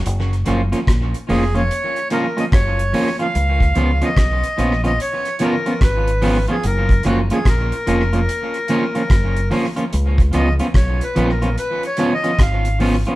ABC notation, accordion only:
X:1
M:4/4
L:1/16
Q:"Swing 16ths" 1/4=73
K:F#
V:1 name="Accordion"
z6 G c3 A d c3 e- | e3 d4 d c2 A2 B3 G | A2 F G A8- A2 z2 | z2 d2 (3c2 B2 A2 (3B2 c2 d2 e2 z2 |]